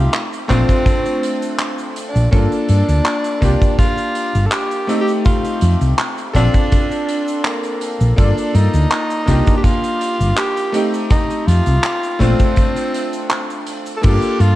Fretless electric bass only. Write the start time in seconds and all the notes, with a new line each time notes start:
0.50 A#1
2.15 A#1
2.33 G1
2.69 G2
2.88 D2
3.42 C2
4.35 G1
5.62 F2
5.81 C2
6.35 A#1
8.01 A#1
8.18 G1
8.54 G2
8.74 D2
9.28 C2
10.20 G1
11.47 F2
11.67 C2
12.20 A#1
14.04 G1
14.40 G2